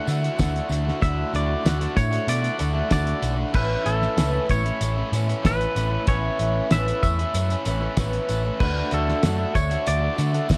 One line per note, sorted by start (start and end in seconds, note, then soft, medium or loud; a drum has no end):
0.00 3.51 D4 medium
0.00 1.02 F#5 loud
0.00 3.51 F#5 medium
0.00 8.57 A5 medium
0.00 1.00 E6 medium
0.06 0.37 D3 medium
0.06 0.28 D3 loud
0.06 0.25 A3 medium
0.06 0.23 D4 medium
0.06 0.38 E4 medium
0.06 0.22 F#4 medium
0.06 closed hi-hat medium
0.06 tambourine medium
0.23 0.39 A3 medium
0.23 0.38 D4 medium
0.23 0.39 F#4 medium
0.23 closed hi-hat soft
0.36 0.59 D2 medium
0.36 0.69 D3 medium
0.36 1.01 F#3 medium
0.36 0.71 A3 medium
0.36 0.70 D4 loud
0.36 1.03 E4 medium
0.36 0.71 F#4 loud
0.36 kick loud
0.36 snare loud
0.36 closed hi-hat loud
0.36 tambourine loud
0.56 closed hi-hat soft
0.69 0.90 D2 medium
0.69 1.00 D3 medium
0.69 0.87 A3 medium
0.69 0.85 D4 medium
0.69 0.84 F#4 medium
0.69 closed hi-hat medium
0.69 tambourine medium
0.85 1.02 A3 medium
0.85 1.02 D4 medium
0.85 1.02 F#4 medium
0.85 snare soft
1.01 1.23 D2 medium
1.01 1.32 D3 medium
1.01 1.62 F#3 medium
1.01 1.33 A3 loud
1.01 1.33 D4 loud
1.01 1.66 E4 medium
1.01 1.33 F#4 loud
1.01 1.32 E5 loud
1.01 3.52 F#6 medium
1.01 kick loud
1.01 closed hi-hat loud
1.33 1.54 D2 medium
1.33 1.63 D3 medium
1.33 1.65 A3 medium
1.33 1.65 D4 medium
1.33 1.65 F#4 medium
1.33 1.96 D5 loud
1.33 closed hi-hat medium
1.33 tambourine soft
1.63 1.85 D2 medium
1.63 1.95 D3 medium
1.63 1.96 F#3 medium
1.63 1.82 A3 medium
1.63 1.80 D4 loud
1.63 1.94 E4 medium
1.63 1.78 F#4 loud
1.63 snare loud
1.63 closed hi-hat loud
1.63 tambourine medium
1.80 1.95 A3 medium
1.80 1.95 D4 medium
1.80 1.95 F#4 medium
1.80 closed hi-hat medium
1.96 2.17 A2 medium
1.96 2.60 A3 soft
1.96 2.57 D4 medium
1.96 2.58 E4 medium
1.96 2.29 C#5 loud
1.96 muted overdriven electric guitar stroke soft
1.96 kick medium
1.96 closed hi-hat medium
1.96 tambourine medium
2.11 2.43 A3 medium
2.11 2.41 D4 medium
2.11 2.40 F#4 medium
2.11 closed hi-hat medium
2.28 2.48 B2 loud
2.28 2.91 D5 loud
2.28 closed hi-hat loud
2.28 tambourine medium
2.42 2.58 A3 medium
2.42 2.58 D4 medium
2.42 2.59 F#4 medium
2.42 closed hi-hat medium
2.58 2.80 D2 loud
2.58 2.88 D3 medium
2.58 2.76 A3 medium
2.58 2.74 D4 medium
2.58 2.91 E4 medium
2.58 2.73 F#4 medium
2.58 closed hi-hat medium
2.58 tambourine medium
2.75 2.90 A3 medium
2.75 2.89 D4 medium
2.75 2.90 F#4 medium
2.89 3.12 D2 medium
2.89 3.19 D3 medium
2.89 3.54 F#3 medium
2.89 3.21 A3 loud
2.89 3.21 D4 loud
2.89 3.56 E4 medium
2.89 3.22 F#4 loud
2.89 3.36 D5 medium
2.89 kick medium
2.89 snare loud
2.89 closed hi-hat loud
2.89 tambourine medium
3.07 closed hi-hat medium
3.21 3.43 B1 medium
3.21 3.52 D3 medium
3.21 3.38 A3 medium
3.21 3.36 D4 medium
3.21 3.35 F#4 medium
3.21 closed hi-hat medium
3.21 tambourine medium
3.36 3.54 A3 medium
3.36 3.52 D4 medium
3.36 3.51 F#4 medium
3.53 3.75 A1 medium
3.53 4.16 A2 medium
3.53 3.84 E3 loud
3.53 3.84 A3 loud
3.53 4.18 B3 medium
3.53 3.86 C#4 loud
3.53 3.86 E4 loud
3.53 3.88 B4 medium
3.53 8.56 C#5 medium
3.53 8.56 B5 medium
3.53 6.04 E6 medium
3.53 kick loud
3.53 tambourine soft
3.53 crash loud
3.84 4.06 A1 loud
3.84 4.16 E3 medium
3.84 4.17 A3 medium
3.84 4.17 C#4 medium
3.84 4.17 E4 medium
3.84 4.45 A4 medium
3.84 closed hi-hat medium
4.02 snare soft
4.16 4.38 C#2 medium
4.16 5.42 A2 medium
4.16 4.48 E3 loud
4.16 4.34 A3 loud
4.16 4.50 B3 medium
4.16 4.33 C#4 loud
4.16 4.32 E4 loud
4.16 snare loud
4.16 closed hi-hat loud
4.16 tambourine loud
4.22 4.49 E4 medium
4.32 4.48 A3 medium
4.32 4.48 C#4 medium
4.32 4.49 E4 medium
4.48 4.70 A1 medium
4.48 5.14 B3 soft
4.48 5.14 C#4 medium
4.48 5.13 E4 medium
4.48 5.09 C#5 medium
4.48 muted overdriven electric guitar stroke soft
4.48 kick medium
4.48 closed hi-hat medium
4.48 tambourine medium
4.63 4.98 A3 medium
4.63 4.96 C#4 medium
4.63 4.96 E4 medium
4.63 closed hi-hat soft
4.81 5.01 A1 loud
4.81 closed hi-hat loud
4.81 tambourine medium
4.96 5.12 A3 medium
4.96 5.12 C#4 medium
4.96 5.13 E4 medium
5.12 5.33 A2 medium
5.12 5.42 E3 medium
5.12 5.29 A3 medium
5.12 5.28 C#4 medium
5.12 5.27 E4 medium
5.12 closed hi-hat medium
5.12 tambourine medium
5.16 5.43 B3 soft
5.28 5.43 A3 medium
5.28 5.43 C#4 medium
5.28 5.44 E4 medium
5.28 closed hi-hat soft
5.42 5.65 A1 loud
5.42 6.05 A2 loud
5.42 5.74 E3 loud
5.42 5.75 A3 medium
5.42 6.06 B3 medium
5.42 5.75 C#4 loud
5.42 5.77 E4 loud
5.42 kick medium
5.42 snare loud
5.42 closed hi-hat loud
5.42 tambourine loud
5.46 6.08 B4 medium
5.61 closed hi-hat medium
5.75 5.96 A1 medium
5.75 6.07 E3 medium
5.75 5.92 A3 medium
5.75 5.90 C#4 medium
5.75 5.90 E4 medium
5.75 closed hi-hat medium
5.75 tambourine medium
5.91 6.07 A3 medium
5.91 6.07 C#4 medium
5.91 6.09 E4 medium
6.07 6.28 A1 medium
6.07 6.69 A2 medium
6.07 6.38 E3 loud
6.07 6.39 A3 medium
6.07 6.70 B3 medium
6.07 6.39 C#4 loud
6.07 6.40 E4 loud
6.07 6.67 C#5 medium
6.07 8.58 F#6 medium
6.07 kick loud
6.07 closed hi-hat loud
6.07 tambourine soft
6.38 6.59 A1 medium
6.38 6.70 E3 medium
6.38 6.71 A3 medium
6.38 6.71 C#4 medium
6.38 6.72 E4 medium
6.38 closed hi-hat medium
6.70 6.91 A1 medium
6.70 7.18 A2 medium
6.70 7.02 E3 loud
6.70 6.88 A3 loud
6.70 7.03 B3 medium
6.70 6.87 C#4 loud
6.70 6.86 E4 loud
6.70 7.01 E5 loud
6.70 snare loud
6.70 closed hi-hat loud
6.70 tambourine loud
6.86 7.03 A3 medium
6.86 7.02 C#4 medium
6.86 7.03 E4 medium
6.86 closed hi-hat medium
7.03 7.23 E2 medium
7.03 7.66 C#4 medium
7.03 7.65 E4 medium
7.03 7.93 E5 loud
7.03 muted overdriven electric guitar stroke medium
7.03 kick medium
7.03 closed hi-hat medium
7.03 tambourine medium
7.08 7.68 B3 soft
7.18 7.52 A3 medium
7.18 7.50 C#4 medium
7.18 7.49 E4 medium
7.18 closed hi-hat soft
7.34 7.54 F#2 medium
7.34 closed hi-hat loud
7.34 tambourine medium
7.49 7.65 A3 medium
7.49 7.66 C#4 medium
7.49 7.67 E4 medium
7.49 closed hi-hat medium
7.65 7.86 A1 medium
7.65 7.97 E3 medium
7.65 7.82 A3 medium
7.65 7.97 B3 soft
7.65 7.81 C#4 medium
7.65 7.81 E4 medium
7.65 closed hi-hat medium
7.65 tambourine medium
7.81 7.98 A3 medium
7.81 7.97 C#4 medium
7.81 7.99 E4 medium
7.97 8.17 A1 loud
7.97 8.58 A2 loud
7.97 8.28 E3 loud
7.97 8.29 A3 loud
7.97 8.61 B3 medium
7.97 8.29 C#4 loud
7.97 8.30 E4 loud
7.97 kick loud
7.97 snare loud
7.97 closed hi-hat loud
7.97 tambourine loud
8.13 closed hi-hat medium
8.28 8.49 A1 medium
8.28 8.60 E3 medium
8.28 8.46 A3 medium
8.28 8.44 C#4 medium
8.28 8.44 E4 medium
8.28 closed hi-hat medium
8.28 tambourine medium
8.44 8.61 A3 medium
8.44 8.59 C#4 medium
8.44 8.63 E4 medium
8.60 8.81 D2 loud
8.60 8.91 D3 medium
8.60 9.21 F#3 medium
8.60 8.92 A3 medium
8.60 8.92 D4 loud
8.60 10.58 D4 medium
8.60 9.25 E4 loud
8.60 8.93 F#4 loud
8.60 8.93 B4 medium
8.60 10.58 F#5 medium
8.60 10.58 A5 medium
8.60 10.58 E6 medium
8.60 kick loud
8.60 tambourine soft
8.60 crash loud
8.91 9.12 D2 loud
8.91 9.22 D3 medium
8.91 9.23 A3 medium
8.91 9.24 D4 medium
8.91 9.25 F#4 medium
8.91 9.58 A4 medium
8.91 closed hi-hat medium
9.09 snare soft
9.22 9.44 F#2 medium
9.22 9.54 D3 loud
9.22 9.54 F#3 medium
9.22 9.40 A3 medium
9.22 9.38 D4 loud
9.22 9.53 E4 medium
9.22 9.37 F#4 loud
9.22 snare loud
9.22 closed hi-hat loud
9.22 tambourine loud
9.38 9.54 A3 medium
9.38 9.54 D4 medium
9.38 9.55 F#4 medium
9.54 9.75 D2 medium
9.54 10.19 A3 medium
9.54 10.17 D4 soft
9.54 10.15 E4 medium
9.54 9.87 C#5 loud
9.54 muted overdriven electric guitar stroke medium
9.54 kick medium
9.54 closed hi-hat medium
9.54 tambourine medium
9.70 10.03 A3 medium
9.70 10.01 D4 medium
9.70 10.00 F#4 medium
9.70 closed hi-hat soft
9.86 10.07 D2 medium
9.86 10.46 D5 loud
9.86 closed hi-hat loud
9.86 tambourine medium
10.01 10.17 A3 medium
10.01 10.17 D4 medium
10.01 10.18 F#4 medium
10.16 10.48 D3 medium
10.16 10.39 D3 loud
10.16 10.35 A3 medium
10.16 10.34 D4 medium
10.16 10.48 E4 medium
10.16 10.33 F#4 medium
10.16 closed hi-hat medium
10.16 tambourine medium
10.34 10.50 A3 medium
10.34 10.49 D4 medium
10.34 10.50 F#4 medium
10.34 closed hi-hat soft
10.48 10.58 D2 loud
10.48 10.58 D3 loud
10.48 10.58 F#3 medium
10.48 10.58 A3 medium
10.48 10.58 D4 loud
10.48 10.58 E4 medium
10.48 10.58 F#4 loud
10.48 kick medium
10.48 snare loud
10.48 closed hi-hat loud
10.48 tambourine loud